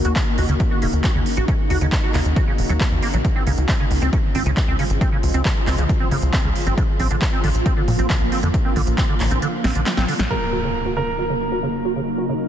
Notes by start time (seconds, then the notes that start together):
Already playing: C#3 A#3 D#4 F#4
0.05 D#2 F#4, closed hi-hat
0.16 C#3, kick, clap, closed hi-hat
0.38 D#2 F#4, open hi-hat
0.49 D#2 C#3, closed hi-hat
0.60 kick, closed hi-hat
0.71 F#4
0.82 D#1 C#3, open hi-hat
0.93 D#2, closed hi-hat
1.04 F#4, kick, clap, closed hi-hat
1.15 D#2 C#3
1.26 open hi-hat
1.37 A#1 F#4, closed hi-hat
1.48 C#3, kick, closed hi-hat
1.70 D#2 F#4, open hi-hat
1.81 D#2 C#3, closed hi-hat
1.92 kick, clap, closed hi-hat
2.03 F#4
2.14 D#2 C#3, clap, open hi-hat
2.25 D#2, closed hi-hat
2.36 F#4, kick, closed hi-hat
2.47 C#3
2.58 D#1, open hi-hat
2.69 D#2 F#3, closed hi-hat
2.80 A#3, kick, clap, closed hi-hat
2.92 D#2
3.03 A#3, open hi-hat
3.14 A#1 F#3, closed hi-hat
3.25 F3 G#3 F4, kick, closed hi-hat
3.36 C4
3.47 C#2 C#3, open hi-hat
3.58 C#2, closed hi-hat
3.69 C4, kick, clap, closed hi-hat
3.80 C#3
3.91 C#2, open hi-hat
4.02 C#2 C4, closed hi-hat
4.13 C#3, kick, closed hi-hat
4.35 G#1 C4, open hi-hat
4.46 C#2 C#3, closed hi-hat
4.57 kick, clap, closed hi-hat
4.68 C#2 C4
4.79 C#3, open hi-hat
4.90 G#1, closed hi-hat
5.01 C4, kick, closed hi-hat
5.12 C#3
5.23 C#2, open hi-hat
5.34 C#2 C4, closed hi-hat
5.45 C#3, kick, clap, closed hi-hat
5.67 C#2 C4, clap, open hi-hat
5.78 C#2 C#3, closed hi-hat
5.89 kick, closed hi-hat
6.00 C4
6.11 G#1 C#3, open hi-hat
6.22 C#2, closed hi-hat
6.33 C4, kick, clap, closed hi-hat
6.44 C#2 C#3
6.56 open hi-hat
6.66 G#1 C4, closed hi-hat
6.78 D3 A#3, kick, closed hi-hat
7.00 A#1 C4, open hi-hat
7.11 A#1 D3, closed hi-hat
7.22 kick, clap, closed hi-hat
7.33 C4
7.44 A#1 D3, open hi-hat
7.55 A#1, closed hi-hat
7.66 C4, kick, closed hi-hat
7.77 D3
7.88 A#2, open hi-hat
7.99 A#1 C4, closed hi-hat
8.10 D3, kick, clap, closed hi-hat
8.21 A#1
8.32 C4, open hi-hat
8.43 F2 D3, closed hi-hat
8.54 kick, closed hi-hat
8.65 C4
8.76 A#1 D3, open hi-hat
8.87 A#1, closed hi-hat
8.98 C4, kick, clap, closed hi-hat
9.09 D3
9.20 A#1, clap, open hi-hat
9.31 A#1 C4, closed hi-hat
9.42 D3, closed hi-hat
9.64 A#1 C4, snare, open hi-hat
9.75 A#1 D3, closed hi-hat
9.86 snare, clap, closed hi-hat
9.97 A#1 C4, snare
10.08 D3, open hi-hat
10.19 A#1, snare, closed hi-hat
10.30 C#3 F#3 A#3 D#4 A#4, impact
10.53 F#4
10.64 C#3
10.86 F#4
10.97 C#3 A#4
11.19 F#4
11.30 C#3
11.52 F#4
11.63 C#3
11.85 F#4
11.96 C#3
12.18 F#4
12.29 C#3